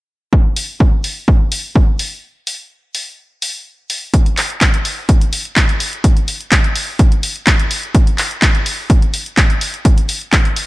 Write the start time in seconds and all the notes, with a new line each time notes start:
0.33 kick
0.56 open hi-hat
0.80 kick
1.04 open hi-hat
1.28 kick
1.52 open hi-hat
1.76 kick
1.99 open hi-hat
2.47 open hi-hat
2.95 open hi-hat
3.42 open hi-hat
3.90 open hi-hat
4.14 kick, closed hi-hat
4.26 closed hi-hat
4.37 clap, open hi-hat
4.50 closed hi-hat
4.61 kick, clap, closed hi-hat
4.74 closed hi-hat
4.85 open hi-hat
5.09 kick, closed hi-hat
5.21 closed hi-hat
5.33 open hi-hat
5.45 closed hi-hat
5.56 kick, clap, closed hi-hat
5.69 closed hi-hat
5.80 open hi-hat
5.93 closed hi-hat
6.04 kick, closed hi-hat
6.17 closed hi-hat
6.28 open hi-hat
6.40 closed hi-hat
6.52 kick, clap, closed hi-hat
6.64 closed hi-hat
6.75 open hi-hat
6.99 kick, closed hi-hat
7.12 closed hi-hat
7.23 open hi-hat
7.36 closed hi-hat
7.47 kick, clap, closed hi-hat
7.59 closed hi-hat
7.71 open hi-hat
7.83 closed hi-hat
7.95 kick, closed hi-hat
8.07 closed hi-hat
8.18 clap, open hi-hat
8.31 closed hi-hat
8.42 kick, clap, closed hi-hat
8.55 closed hi-hat
8.66 open hi-hat
8.90 kick, closed hi-hat
9.02 closed hi-hat
9.14 open hi-hat
9.26 closed hi-hat
9.37 kick, clap, closed hi-hat
9.50 closed hi-hat
9.61 open hi-hat
9.74 closed hi-hat
9.85 kick, closed hi-hat
9.98 closed hi-hat
10.09 open hi-hat
10.21 closed hi-hat
10.33 kick, clap, closed hi-hat
10.45 closed hi-hat
10.56 open hi-hat